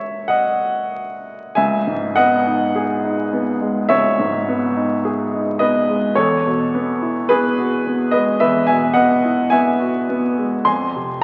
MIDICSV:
0, 0, Header, 1, 2, 480
1, 0, Start_track
1, 0, Key_signature, 4, "minor"
1, 0, Tempo, 1271186
1, 594, Time_signature, 4, 2, 24, 8
1, 594, Tempo, 1167315
1, 1554, Tempo, 1125704
1, 4678, End_track
2, 0, Start_track
2, 0, Title_t, "Grand piano"
2, 0, Program_c, 0, 0
2, 0, Control_c, 0, 64, 127
2, 0, Note_on_c, 0, 56, 36
2, 0, Note_on_c, 0, 58, 34
2, 0, Note_on_c, 0, 61, 34
2, 0, Note_on_c, 0, 73, 58
2, 0, Note_on_c, 0, 76, 77
2, 98, Note_off_c, 0, 73, 0
2, 105, Note_on_c, 0, 78, 81
2, 111, Note_off_c, 0, 76, 0
2, 111, Note_on_c, 0, 75, 60
2, 577, Note_off_c, 0, 75, 0
2, 580, Note_off_c, 0, 56, 0
2, 580, Note_off_c, 0, 58, 0
2, 582, Note_off_c, 0, 61, 0
2, 586, Note_on_c, 0, 80, 93
2, 589, Note_off_c, 0, 78, 0
2, 591, Note_on_c, 0, 76, 72
2, 594, Note_on_c, 0, 37, 59
2, 602, Control_c, 0, 64, 0
2, 666, Control_c, 0, 64, 127
2, 717, Note_on_c, 0, 44, 43
2, 818, Note_off_c, 0, 76, 0
2, 832, Note_off_c, 0, 80, 0
2, 833, Note_on_c, 0, 78, 116
2, 837, Note_on_c, 0, 75, 82
2, 843, Note_on_c, 0, 59, 55
2, 910, Note_off_c, 0, 44, 0
2, 960, Note_on_c, 0, 63, 50
2, 1033, Note_off_c, 0, 59, 0
2, 1080, Note_on_c, 0, 68, 56
2, 1151, Note_off_c, 0, 63, 0
2, 1198, Note_on_c, 0, 63, 46
2, 1270, Note_off_c, 0, 68, 0
2, 1317, Note_on_c, 0, 59, 44
2, 1387, Note_off_c, 0, 63, 0
2, 1432, Note_on_c, 0, 56, 45
2, 1506, Note_off_c, 0, 59, 0
2, 1537, Note_off_c, 0, 37, 0
2, 1537, Note_off_c, 0, 75, 0
2, 1545, Note_on_c, 0, 76, 110
2, 1549, Note_on_c, 0, 73, 76
2, 1552, Note_off_c, 0, 78, 0
2, 1552, Note_on_c, 0, 37, 53
2, 1626, Note_off_c, 0, 56, 0
2, 1676, Note_on_c, 0, 44, 45
2, 1800, Note_on_c, 0, 59, 52
2, 1872, Note_off_c, 0, 44, 0
2, 1920, Note_on_c, 0, 63, 46
2, 1993, Note_off_c, 0, 59, 0
2, 2041, Note_on_c, 0, 68, 52
2, 2112, Note_off_c, 0, 63, 0
2, 2163, Note_on_c, 0, 63, 44
2, 2230, Note_off_c, 0, 68, 0
2, 2258, Note_off_c, 0, 73, 0
2, 2272, Note_on_c, 0, 75, 82
2, 2273, Note_off_c, 0, 76, 0
2, 2277, Note_on_c, 0, 71, 67
2, 2280, Note_on_c, 0, 59, 44
2, 2350, Note_off_c, 0, 63, 0
2, 2400, Note_on_c, 0, 56, 44
2, 2468, Note_off_c, 0, 59, 0
2, 2497, Note_off_c, 0, 37, 0
2, 2497, Note_off_c, 0, 71, 0
2, 2512, Note_off_c, 0, 75, 0
2, 2512, Note_on_c, 0, 73, 84
2, 2516, Note_on_c, 0, 69, 63
2, 2517, Note_off_c, 0, 56, 0
2, 2520, Control_c, 0, 64, 0
2, 2521, Note_on_c, 0, 40, 52
2, 2591, Control_c, 0, 64, 127
2, 2642, Note_on_c, 0, 47, 45
2, 2764, Note_on_c, 0, 59, 52
2, 2832, Note_off_c, 0, 47, 0
2, 2881, Note_on_c, 0, 64, 46
2, 2954, Note_off_c, 0, 59, 0
2, 2982, Note_off_c, 0, 69, 0
2, 2995, Note_on_c, 0, 71, 95
2, 2997, Note_off_c, 0, 73, 0
2, 3000, Note_on_c, 0, 68, 76
2, 3006, Note_on_c, 0, 59, 50
2, 3072, Note_off_c, 0, 64, 0
2, 3122, Note_on_c, 0, 66, 48
2, 3193, Note_off_c, 0, 59, 0
2, 3243, Note_on_c, 0, 59, 43
2, 3308, Note_off_c, 0, 66, 0
2, 3338, Note_off_c, 0, 68, 0
2, 3347, Note_on_c, 0, 75, 89
2, 3348, Note_off_c, 0, 71, 0
2, 3355, Note_on_c, 0, 71, 61
2, 3358, Note_on_c, 0, 56, 43
2, 3427, Note_off_c, 0, 59, 0
2, 3457, Note_off_c, 0, 40, 0
2, 3463, Note_off_c, 0, 71, 0
2, 3467, Note_off_c, 0, 75, 0
2, 3470, Note_on_c, 0, 76, 99
2, 3473, Note_on_c, 0, 71, 69
2, 3477, Note_on_c, 0, 40, 46
2, 3543, Note_off_c, 0, 56, 0
2, 3581, Note_off_c, 0, 71, 0
2, 3581, Note_off_c, 0, 76, 0
2, 3583, Note_on_c, 0, 80, 95
2, 3587, Note_on_c, 0, 76, 73
2, 3592, Note_on_c, 0, 47, 46
2, 3698, Note_off_c, 0, 76, 0
2, 3698, Note_on_c, 0, 78, 103
2, 3702, Note_on_c, 0, 75, 69
2, 3704, Note_off_c, 0, 80, 0
2, 3706, Note_on_c, 0, 59, 49
2, 3780, Note_off_c, 0, 47, 0
2, 3830, Note_on_c, 0, 64, 49
2, 3897, Note_off_c, 0, 59, 0
2, 3926, Note_off_c, 0, 75, 0
2, 3939, Note_on_c, 0, 80, 103
2, 3941, Note_off_c, 0, 78, 0
2, 3946, Note_on_c, 0, 76, 71
2, 3948, Note_on_c, 0, 59, 55
2, 4020, Note_off_c, 0, 64, 0
2, 4067, Note_on_c, 0, 66, 47
2, 4140, Note_off_c, 0, 59, 0
2, 4191, Note_on_c, 0, 59, 49
2, 4261, Note_off_c, 0, 66, 0
2, 4314, Note_on_c, 0, 56, 39
2, 4385, Note_off_c, 0, 59, 0
2, 4415, Note_off_c, 0, 76, 0
2, 4418, Note_off_c, 0, 40, 0
2, 4427, Note_off_c, 0, 80, 0
2, 4428, Note_on_c, 0, 84, 95
2, 4434, Note_off_c, 0, 56, 0
2, 4434, Note_on_c, 0, 80, 62
2, 4437, Note_on_c, 0, 41, 53
2, 4440, Control_c, 0, 64, 0
2, 4515, Control_c, 0, 64, 127
2, 4559, Note_on_c, 0, 48, 44
2, 4660, Note_off_c, 0, 80, 0
2, 4674, Note_off_c, 0, 84, 0
2, 4678, Note_off_c, 0, 41, 0
2, 4678, Note_off_c, 0, 48, 0
2, 4678, End_track
0, 0, End_of_file